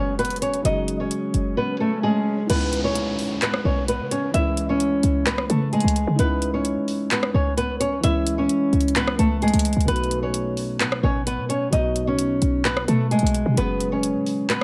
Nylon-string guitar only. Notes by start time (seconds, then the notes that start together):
Already playing: C#4 C#5
0.19 B3 B4
0.42 C#4 C#5
0.65 D#4 D#5
1.00 C#4 C#5
1.57 B3 B4
1.80 A3 A4
2.03 G#3 G#4
2.50 B3 B4
2.84 C#4 C#5
3.42 B3 B4
3.65 C#4 C#5
3.88 B3 B4
4.11 C#4 C#5
4.34 E4 E5
4.69 C#4 C#5
5.26 B3 B4
5.50 A3 A4
5.73 G#3 G#4
6.19 B3 B4
6.54 C#4 C#5
7.11 B3 B4
7.35 C#4 C#5
7.57 B3 B4
7.80 C#4 C#5
8.04 E4 E5
8.38 C#4 C#5
8.96 B3 B4
9.19 A3 A4
9.42 G#3 G#4
9.88 B3 B4
10.23 C#4 C#5
10.80 B3 B4
11.03 C#4 C#5
11.27 B3 B4
11.49 C#4 C#5
11.72 D#4 D#5
12.07 C#4 C#5
12.65 B3 B4
12.88 A3 A4
13.11 G#3 G#4
13.58 B3 B4
13.92 C#4 C#5
14.50 B3 B4